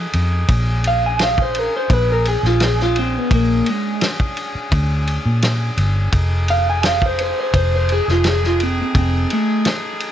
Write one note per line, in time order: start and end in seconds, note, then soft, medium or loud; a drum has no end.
0.00 0.45 A3 medium
0.00 0.45 D#4 medium
0.00 6.09 G#4 medium
0.13 0.43 F2 medium
0.13 ride medium
0.48 1.67 A#1 medium
0.48 6.09 C#4 medium
0.48 6.09 D4 medium
0.48 kick loud
0.48 ride medium
0.84 1.04 F5 medium
0.84 ride medium
1.06 1.21 G#5 medium
1.19 snare loud
1.19 ride medium
1.23 1.39 F5 medium
1.38 kick medium
1.42 1.59 C5 medium
1.55 1.75 A#4 medium
1.55 ride medium
1.76 1.91 C5 medium
1.90 2.35 A#1 loud
1.90 2.10 B4 medium
1.90 kick loud
1.90 ride medium
2.12 2.27 A#4 medium
2.25 2.45 G#4 medium
2.25 ride medium
2.43 3.17 A#1 medium
2.43 2.62 F4 medium
2.43 snare soft
2.60 2.80 G#4 medium
2.60 snare loud
2.60 ride medium
2.80 2.97 F4 medium
2.80 snare soft
2.96 3.17 C4 loud
2.96 ride medium
3.17 3.32 B3 medium
3.31 3.61 A#1 medium
3.31 3.67 A#3 loud
3.31 kick loud
3.31 ride medium
3.66 4.02 G#3 loud
3.66 ride medium
4.01 snare loud
4.01 ride medium
4.20 kick medium
4.37 ride medium
4.55 muted fingered electric bass stroke soft
4.72 5.17 D2 loud
4.72 kick loud
4.72 ride medium
5.07 ride medium
5.26 5.69 A#2 medium
5.42 snare loud
5.42 ride medium
5.77 6.07 G1 medium
5.77 ride medium
6.12 7.31 F1 medium
6.12 10.12 A3 medium
6.12 10.12 D#4 medium
6.12 10.12 G#4 medium
6.12 kick loud
6.12 ride medium
6.48 6.67 F5 loud
6.48 ride medium
6.70 6.85 G#5 loud
6.83 7.03 F5 medium
6.83 snare loud
6.83 ride medium
7.02 kick medium
7.06 7.20 C5 medium
7.19 7.38 C5 loud
7.19 ride medium
7.40 7.55 C5 medium
7.53 7.99 F1 loud
7.53 7.73 C5 medium
7.53 kick loud
7.53 ride medium
7.76 7.91 C5 medium
7.89 8.09 G#4 loud
7.89 ride medium
8.08 8.81 F1 medium
8.08 8.26 F4 medium
8.08 snare soft
8.24 8.44 G#4 medium
8.24 snare loud
8.24 ride medium
8.44 8.61 F4 medium
8.44 snare soft
8.60 8.79 C4 medium
8.60 ride medium
8.81 8.96 C4 medium
8.95 9.25 F1 medium
8.95 9.31 C4 medium
8.95 kick loud
8.95 ride medium
9.30 9.66 A3 loud
9.30 ride medium
9.65 snare loud
9.65 ride medium
10.00 ride medium